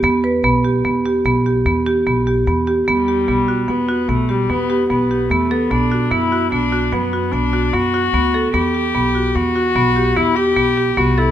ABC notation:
X:1
M:7/4
L:1/8
Q:1/4=148
K:Em
V:1 name="Marimba"
B, B B, G B, G B, G B, G B, G B, G | B, G B, F B, F B, G B, G B, G B, A | B, F B, F B, F B, F B, F B, F B, A | B, G B, F B, F B, G B, G B, G B, A |]
V:2 name="Viola"
z12 z2 | G,4 B,2 A, G, B,2 B,2 A, B, | D2 E2 D2 B,2 D2 F4 | G4 F4 E G3 F E |]
V:3 name="Upright bass" clef=bass
E,,2 B,,,2 E,,2 B,,,2 E,,2 B,,,2 E,,2 | E,,2 B,,,2 E,,2 B,,,2 E,,2 B,,,2 E,,2 | B,,,2 F,,2 B,,,2 F,,2 B,,,2 F,,2 D,,2 | E,,2 B,,,2 E,,2 B,,,2 E,,2 B,,,2 C,,2 |]